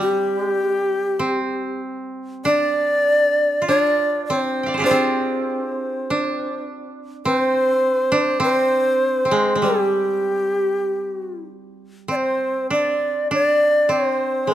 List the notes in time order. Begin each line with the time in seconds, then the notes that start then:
Already playing: G3 C4 D4
0.00 G4
1.19 C4
2.45 D4 D5
3.62 F4
3.68 D4 C#5
3.79 D5
4.26 C5
4.30 C4
4.63 F5 G5
4.68 D5
4.74 G#4 C5
4.80 F4 G4
4.84 D4 C5
4.91 C4
6.10 D4
7.25 C4 C5
8.12 D4
8.40 C4 C5
9.25 C4
9.31 G#3
9.55 G#3
9.62 G3 G4
12.08 C4 D5
12.16 C5
12.70 D4 D5
13.31 D4 D5
13.89 C4 C5
14.47 G#3